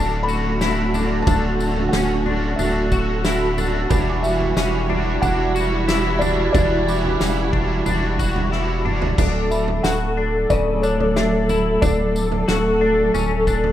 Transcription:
Already playing: D1 D3 A3 C#4 D4 F#4 A4 A5
0.23 B5
0.28 F#4, tambourine
0.59 A3 C#4 E4 F#4, snare, tambourine
0.63 A4
0.94 D4, floor tom, tambourine
1.22 D3 A3 A5
1.27 D1 C#4 D4 F#4 A4, kick, floor tom, tambourine
1.60 tambourine
1.76 floor tom
1.89 D1 A3 F#5, snare
1.93 C#4 F#4 A4, tambourine
2.26 D4, floor tom
2.56 D1 A3 C#4 D4 E5, floor tom, tambourine
2.61 F#4 A4
2.92 F#4, kick, tambourine
3.24 A3 C#4 E4 F#4 A4, snare, tambourine
3.58 D4, floor tom, tambourine
3.89 E1 E3 G3 D4 E4 F#4 B5, kick, floor tom, tambourine
4.10 D6
4.23 E5, tambourine
4.40 floor tom
4.55 E1 G3 C#4 D4 E4, snare, tambourine
4.60 F#4
4.89 D4, floor tom
5.22 E1 G3 D4 E4 F#5, kick, floor tom, tambourine
5.26 F#4
5.55 F#4, tambourine
5.88 G3 D4 E4 E6, snare, tambourine
5.93 F#4
6.19 D4 D5, floor tom, tambourine
6.52 E1 E3 G3 D4 E4 D5, kick, floor tom, tambourine
6.56 F#4
6.88 D6, tambourine
7.05 floor tom
7.10 F#6
7.18 E1 C#3 G3 E4, snare, tambourine
7.23 F#4
7.53 D4, kick, floor tom
7.85 E1 G3 D4 E4, floor tom, tambourine
7.89 F#4
8.19 F#4, kick, tambourine
8.36 floor tom
8.50 G3 D4 E4, snare
8.54 F#4
8.85 D4, mid tom
9.02 floor tom
9.18 D1 F#3 A3 D4 A4, kick, floor tom, crash, tambourine
9.51 E5 B5, tambourine
9.68 floor tom
9.83 D1 F#4 F#5, snare, tambourine
10.17 D4
10.50 D1 C#3 D5, kick, floor tom, tambourine
10.82 D4 C#5, tambourine
11.00 C#5, floor tom
11.16 D4 E5, snare, tambourine
11.49 E4, floor tom, tambourine
11.82 D1 D4 D5, kick, floor tom, tambourine
12.16 tambourine
12.32 floor tom
12.48 D1 F#4, snare, tambourine
12.81 D4
13.14 D1 C#4, floor tom, tambourine
13.47 D4, kick, tambourine
13.64 floor tom

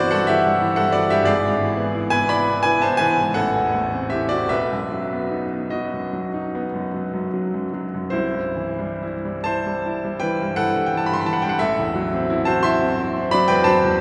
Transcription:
Already playing: G1 G2 E3 B3 C4 E4 F#4 A4 B4 C5 D5
0.11 G2 A4 F#5
0.27 E3 G4 E5
0.46 G2
0.62 E3
0.76 G2 A4 F#5
0.92 E3 F#4 D5
1.10 G2 G4 E5
1.23 G#1 G#4 D5
1.44 G#2
1.61 E3
1.77 B3
1.95 E4
2.10 B3 B4 G#5
2.29 E4 D5 B5
2.49 B3
2.63 E4 B4 G#5
2.82 B3 C5 A5
2.97 E3 B4 G#5
3.19 G#2
3.34 A1 A4 F#5
3.55 E2
3.75 A3
3.94 C4
4.10 E4 G4 E5
4.29 C4 F#4 D5
4.49 B1 B4 E5
4.72 F#2
4.92 F#3
5.13 B3
5.31 D#4
5.53 B3
5.70 F#3 F#4 D#5
5.94 F#2
6.13 F#3
6.34 D#4
6.55 B3
6.74 F#2
6.94 F#3
7.13 F#2
7.34 F#3
7.54 F#2
7.73 F#3
7.94 F#2
8.10 C2 E4 C5
8.33 G2
8.56 E3
8.79 G3
9.03 E4
9.25 G3
9.44 E4 C5 A5
9.67 G3
9.86 E4
10.04 G3
10.20 E3 B4 G5
10.41 G2
10.56 E3 A4 F#5
10.75 G2
10.86 G5
10.93 E3
10.97 A5
11.06 G2 B5
11.13 C6
11.21 B5
11.25 E3 A5
11.33 F#5
11.42 G2 G5
11.49 F#5
11.59 A1 A4 E5
11.79 E2
11.95 F#3
12.14 C4
12.30 E4
12.45 F#4 C5 A5
12.63 E4 E5 C6
12.82 C4
13.00 E4
13.16 C4
13.31 F#3 D5 B5
13.48 E2 B4 G5
13.64 F#3 C5 A5
13.84 E2

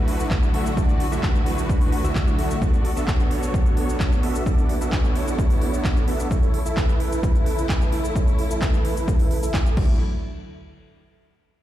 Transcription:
Already playing: D2 D3 F#3 A3 D4 E4 F#4 B4
0.08 open hi-hat
0.20 shaker
0.31 kick, clap, shaker
0.43 shaker
0.54 D2 A3 D4 E4 F#4 E5, open hi-hat
0.66 shaker
0.77 D2 A3 D4 E4 F#4 D5, kick, shaker
0.89 shaker
1.00 open hi-hat
1.12 D2 A3 D4 E4 F#4 E5, shaker
1.23 D2 A3 D4 E4 F#4 B4, kick, clap, shaker
1.35 shaker
1.46 open hi-hat
1.58 shaker
1.69 kick, shaker
1.81 open hi-hat, shaker
1.92 open hi-hat
2.04 D2 A3 D4 E4 F#4 E5, shaker
2.15 kick, clap, shaker
2.27 D2 A3 D4 E4 F#4 E5, shaker
2.39 D2 A3 D4 E4 F#4 E5, open hi-hat
2.51 shaker
2.62 B3 D4 A4 D5, kick, shaker
2.74 shaker
2.85 open hi-hat
2.96 B3 D4 F#4 A4 E5, shaker
3.08 B3 F#4 A4, kick, clap, shaker
3.20 shaker
3.31 open hi-hat
3.43 shaker
3.54 kick, shaker
3.66 shaker
3.77 open hi-hat
3.89 shaker
4.00 kick, clap, shaker
4.12 shaker
4.23 B3 D4 F#4 A4 E5, open hi-hat
4.35 shaker
4.46 B3 D4 E4 A4 D5, kick, shaker
4.58 shaker
4.69 open hi-hat
4.81 B3 D4 F#4 A4 E5, shaker
4.92 B3 F#4 A4, kick, clap, shaker
5.05 shaker
5.15 open hi-hat
5.28 shaker
5.39 kick, shaker
5.50 open hi-hat, shaker
5.62 open hi-hat
5.74 shaker
5.85 kick, clap, shaker
5.97 shaker
6.08 B3 D4 F#4 A4 E5, open hi-hat
6.20 shaker
6.31 C#3 E3 A3 E4, kick, shaker
6.43 shaker
6.54 open hi-hat
6.66 E4 A4 E5, shaker
6.77 E4 B4, kick, clap, shaker
6.89 shaker
7.00 open hi-hat
7.12 shaker
7.23 kick, shaker
7.35 shaker
7.46 open hi-hat
7.58 shaker
7.69 kick, clap, shaker
7.81 shaker
7.92 E4 A4 E5, open hi-hat
8.05 shaker
8.16 E4 A4 C#5, kick, shaker
8.28 shaker
8.39 open hi-hat
8.50 E4 A4 E5, shaker
8.62 E4 A4 B4, kick, clap, shaker
8.74 shaker
8.85 open hi-hat
8.97 shaker
9.08 kick, shaker
9.19 open hi-hat, shaker
9.31 open hi-hat
9.43 E4 A4 E5, shaker
9.54 kick, clap, shaker
9.66 E4 A4 E5, shaker
9.77 D2 D3 F#3 A3 D4 E4 F#4 D5, kick, crash

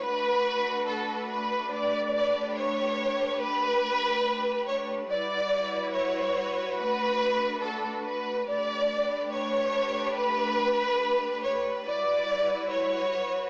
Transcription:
Already playing: B4
0.03 A3 D4 F#4 B4
0.87 A4
1.30 B4
1.72 G4 D5
2.57 C#5
3.41 B4
4.68 C#5
5.10 G3 E4 F#4 B4 D5
5.94 C#5
6.79 A3 D4 B4
7.63 A4
8.06 B4
8.48 A3 D4 G4 B4 D5
9.33 C#5
10.17 B4
11.44 C#5
11.86 G3 E4 F#4 D5
12.70 C#5

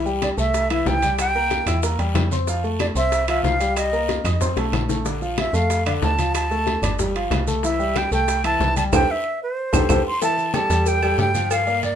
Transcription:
Already playing: C2
0.05 G3 G4 G5, high conga, maracas
0.22 D5, high bongo, high conga, high timbale, short guiro, claves, maracas
0.37 C2 A3 A4 E5 A5, short guiro, maracas
0.54 high bongo, high conga, high timbale, long guiro, maracas
0.70 E3 E4 E5, high conga, high timbale, claves, maracas
0.86 C2 G5, high bongo, low bongo, high conga, low timbale, short guiro, maracas
1.02 G3 G4 G5, high conga, high timbale, short guiro, maracas
1.18 G5, high bongo, high conga, high timbale, long guiro, claves, maracas
1.35 A#3 A#4 A#5, high bongo, high conga, maracas
1.50 high bongo, high conga, high timbale, short guiro, maracas
1.67 E2 E4 E5 E6, high bongo, high conga, low conga, high timbale, short guiro, claves, maracas
1.83 A#3 A#4 A#5, high bongo, high conga, long guiro, maracas
1.99 E2 G3 G4 G5, high conga, high timbale, maracas
2.15 F2, high bongo, low bongo, high conga, high timbale, low timbale, short guiro, claves, maracas
2.31 C4 C5 C6, high bongo, high conga, short guiro, maracas
2.47 F3 F4 F5, high bongo, high conga, long guiro, maracas
2.64 A3 A4 A5, high conga, maracas
2.79 D5, high bongo, high conga, high timbale, short guiro, claves, maracas
2.95 C2 C4 C5 E5 C6, short guiro, maracas
3.12 high bongo, high conga, high timbale, long guiro, maracas
3.28 F3 F4 E5 F5, high conga, high timbale, claves, maracas
3.44 C2 F5, high bongo, low bongo, high conga, short guiro, maracas
3.60 G3 G4 G5, high timbale, short guiro, maracas
3.76 D#5, high bongo, high conga, high timbale, long guiro, claves, maracas
3.93 A#3 A#4 A#5, high bongo, high conga, maracas
4.09 high bongo, high conga, high timbale, short guiro, maracas
4.25 F2 D#4 D#5 D#6, high bongo, high conga, low conga, high timbale, short guiro, claves, maracas
4.41 C4 C5 C6, high bongo, high conga, low conga, long guiro, maracas
4.57 B1 A3 A4 A5, high bongo, high conga, high timbale, maracas
4.73 A#1, low bongo, high conga, high timbale, low timbale, short guiro, claves, maracas
4.89 A3 A4 A5, low bongo, high conga, short guiro, maracas
5.05 D3 D4 D5, high bongo, high conga, long guiro, maracas
5.22 F3 F4 F5, high conga, maracas
5.38 E5, high bongo, high conga, high timbale, short guiro, claves, maracas
5.53 F2 A3 A4 F5 A5, short guiro, maracas
5.70 high bongo, high conga, high timbale, long guiro, maracas
5.86 D3 D4 D5 F5, high conga, high timbale, claves, maracas
6.02 D2 A5, high bongo, low bongo, high conga, low timbale, short guiro, maracas
6.18 F3 F4 F5, high conga, high timbale, short guiro, maracas
6.35 A5, high bongo, high conga, high timbale, long guiro, claves, maracas
6.50 A3 A4 A5, high bongo, high conga, maracas
6.67 high bongo, high conga, high timbale, short guiro, maracas
6.82 G1 D4 D5 D6, high bongo, high conga, low conga, high timbale, short guiro, claves, maracas
6.99 G3 G4 G5, high bongo, high conga, low conga, long guiro, maracas
7.15 F3 F4 F5, high conga, high timbale, maracas
7.31 C2, high bongo, low bongo, high conga, high timbale, low timbale, short guiro, claves, maracas
7.47 A3 A4 A5, high bongo, high conga, short guiro, maracas
7.63 E3 E4 E5, high bongo, high conga, long guiro, maracas
7.79 G3 G4 G5, high conga, maracas
7.96 G5, high bongo, high conga, high timbale, short guiro, claves, maracas
8.12 C2 A3 A4 G5 A5, short guiro, maracas
8.28 high bongo, high conga, high timbale, long guiro, maracas
8.44 E3 E4 E5 A5, high conga, high timbale, claves, maracas
8.60 C2, high bongo, low bongo, high conga, short guiro, maracas
8.76 G3 G4 G5 A5, high conga, high timbale, short guiro, maracas
8.92 C2 G4 A4 C5 G5, low bongo, low conga, high timbale, long guiro, claves, maracas
9.11 E5
9.43 C5
9.73 C2 G4 A4 C5, low bongo, low conga, high timbale, long guiro, claves, maracas
9.89 C2 G4 A4 C5, low bongo, low conga, high timbale, long guiro, claves, maracas
10.07 C6
10.22 E3 E4 E5 A5, cowbell, high conga, low agogo, long guiro, maracas
10.38 high conga, maracas
10.54 G3 G4 A4 A5, cowbell, high conga, low agogo, short guiro, claves, maracas
10.70 E2 G3 G4 A4, cowbell, low agogo, short guiro, maracas
10.86 G5, cowbell, high conga, long guiro, maracas
11.02 G3 G4 A4, high conga, low agogo, claves, maracas
11.18 G2 G5, cowbell, high conga, low timbale, low agogo, short guiro, maracas
11.34 F3 F4 F5, high conga, short guiro, maracas
11.51 F5, cowbell, high conga, low agogo, long guiro, claves, maracas
11.67 A#3 A#4 D5, high conga, maracas
11.83 D5, cowbell, high conga, low agogo, short guiro, maracas

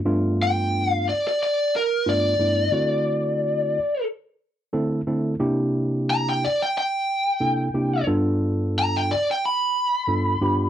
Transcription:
0.05 G2 A3 B3 D4 F4
0.43 G5
0.91 F5
1.09 D5
1.28 D5
1.43 D5
1.76 A#4
2.06 G2 A3 B3 D4 F4 D5
2.39 G2 A3 B3 D4 E4
2.72 D3 A3 C4 E4 F#4
4.73 D3 A3 C4 E4 A4
5.07 D3 A3 C4 E4 A4
5.40 C3 A#3 D4 E4 G4
6.10 A#5
6.29 G5
6.45 D5
6.62 G5
6.78 G5
7.40 C3 A#3 D4 E4 A4
7.74 C3 A#3 D4 E4 G4
8.07 G2 B3 D4 F4 A4
8.79 A#5
8.97 G5
9.12 D5
9.31 G5
9.45 B5
10.08 G2 B3 D4 F4 A4
10.41 G2 B3 D4 F4 G4

